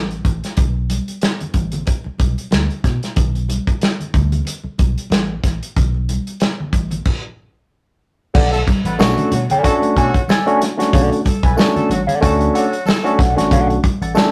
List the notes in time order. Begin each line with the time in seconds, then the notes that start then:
Already playing: A1
0.11 closed hi-hat
0.25 A1, kick, closed hi-hat
0.44 snare, closed hi-hat
0.57 B1, kick, closed hi-hat, muted conga, low conga
0.90 closed hi-hat, high conga
1.08 closed hi-hat
1.22 snare, closed hi-hat
1.40 closed hi-hat, muted conga, low conga
1.54 A1, kick, closed hi-hat, high conga
1.72 closed hi-hat, low conga
1.86 kick, closed hi-hat, muted conga
2.04 muted picked electric bass stroke, muted conga
2.18 B1, kick, closed hi-hat, high conga
2.38 closed hi-hat
2.51 D2, snare, closed hi-hat, high conga
2.69 closed hi-hat, muted conga
2.84 B2, kick, snare, closed hi-hat
3.03 snare, closed hi-hat
3.16 B1, kick, closed hi-hat, low conga
3.35 closed hi-hat
3.49 closed hi-hat, high conga
3.67 kick, closed hi-hat
3.81 snare, closed hi-hat, muted conga
4.00 closed hi-hat, low conga
4.14 D2, kick, closed hi-hat, high conga
4.32 closed hi-hat, low conga
4.45 closed hi-hat, muted conga
4.63 muted picked electric bass stroke, muted conga
4.78 B1, kick, closed hi-hat, high conga
4.98 closed hi-hat
5.10 A1, snare, closed hi-hat, muted conga, high conga
5.30 muted conga
5.44 A1, kick, snare, closed hi-hat
5.63 closed hi-hat
5.76 B1, kick, closed hi-hat, low conga
5.94 muted conga
6.09 closed hi-hat, high conga
6.27 closed hi-hat
6.40 snare, closed hi-hat, muted conga
6.60 low conga
6.73 A1, kick, closed hi-hat, high conga
6.91 closed hi-hat, low conga
7.05 kick, crash
8.34 B1 A4 D5 F#5, kick, crash, muted conga, low conga
8.52 A3 A4, muted clean electric guitar stroke, closed hi-hat, muted conga
8.67 muted clean electric guitar stroke, kick, closed hi-hat, high conga
8.85 A1 B3 A4 B4 D5 F#5, closed hi-hat
8.99 B1 A3 C#4 D4 F#4, snare, tambourine, muted conga
9.17 A3 A4, muted clean electric guitar stroke, closed hi-hat, muted conga, low conga
9.32 B2 F#3 F#4, closed hi-hat, high conga
9.50 A4 D5 G#5, closed hi-hat, low conga
9.63 A2 A3 C#4 D4 F#4 A4, kick, closed hi-hat, muted conga
9.82 muted clean electric guitar stroke, closed hi-hat, muted conga
9.96 B2 F#3 F#4 A4 D5 G#5, kick, closed hi-hat
10.14 muted clean electric guitar stroke, kick, closed hi-hat
10.28 A4 D5 G#5, snare, tambourine, high conga
10.46 A3 C#4 D4 F#4, closed hi-hat, muted conga
10.62 muted clean electric guitar stroke, snare, closed hi-hat
10.77 A3 C#4 D4 F#4, muted clean electric guitar stroke, snare, closed hi-hat
10.93 B1 A4 D5 F#5, kick, closed hi-hat, muted conga, low conga
11.12 muted clean electric guitar stroke, closed hi-hat
11.25 A3 A4, muted clean electric guitar stroke, kick, closed hi-hat, high conga
11.43 B1 B3 A4 B4 D5 G#5, kick, closed hi-hat
11.57 A3 C#4 D4 F#4, snare, tambourine, muted conga
11.75 A3 A4, muted clean electric guitar stroke, muted picked electric bass stroke, closed hi-hat, muted conga, low conga
11.89 A1 F#3 F#4, closed hi-hat, high conga
12.07 A4 D5 F#5, closed hi-hat, low conga
12.20 D2 A3 C#4 D4 F#4 A4, muted clean electric guitar stroke, kick, closed hi-hat, muted conga
12.39 muted clean electric guitar stroke, closed hi-hat, muted conga
12.54 F#3 F#4 A4 D5 F#5, closed hi-hat
12.73 muted clean electric guitar stroke, closed hi-hat
12.86 A3 A4, muted clean electric guitar stroke, snare, tambourine, muted conga, high conga
13.03 A3 C#4 D4 F#4, closed hi-hat, muted conga
13.19 B1 A4 D5 F#5, kick, snare, closed hi-hat
13.36 A1 A3 C#4 D4 F#4, muted clean electric guitar stroke, snare, closed hi-hat
13.51 B1 A4 D5 F#5, kick, closed hi-hat, muted conga, low conga
13.70 muted clean electric guitar stroke, closed hi-hat
13.83 muted clean electric guitar stroke, kick, closed hi-hat, high conga
14.02 A1 A4 D5 F#5, closed hi-hat
14.15 A3 C#4 D4 A4, muted clean electric guitar stroke, snare, tambourine